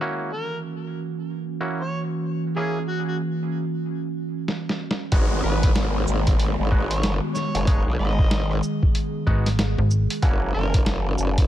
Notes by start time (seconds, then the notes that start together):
0.01 E3 A#3 C#4 E4 F#4
0.33 A#4
1.61 A#3 C#4 E4 F#4
1.80 C#5
2.56 A#3 C#4 E4 G#4
2.88 F#4
3.08 F#4
4.48 snare
4.69 snare
4.91 snare
5.12 G#1 D#3 G#3 B3 D#4 F#4, kick, closed hi-hat, downlifter
5.44 G#1 B4, cross-stick
5.63 kick, closed hi-hat
5.76 snare, closed hi-hat
6.07 G#1, shaker
6.27 kick, closed hi-hat
6.40 closed hi-hat
6.59 G#1
6.71 G#3 B3 D#4 F#4, kick
6.91 C#5, closed hi-hat
7.02 G1, snare, closed hi-hat
7.35 C#5, snare, shaker
7.55 F#1, closed hi-hat
7.67 G#3 B3 D#4 G#4, kick, closed hi-hat
7.87 B1
7.99 G#1 D#5, cross-stick
8.06 cross-stick
8.10 cross-stick
8.19 kick, cross-stick
8.21 cross-stick
8.27 cross-stick
8.31 snare, closed hi-hat
8.51 cross-stick
8.63 shaker
8.83 kick
8.95 closed hi-hat
9.27 G#1 G#3 B3 D#4 F#4, kick
9.46 snare, closed hi-hat
9.59 snare, closed hi-hat
9.78 G#1
9.91 shaker
10.10 closed hi-hat
10.22 F#1 E3 A#3 C#4 E4 F#4, kick, closed hi-hat
10.54 F#1 A#4, cross-stick
10.74 kick, closed hi-hat
10.86 snare, closed hi-hat
11.18 F#1, shaker
11.38 kick, closed hi-hat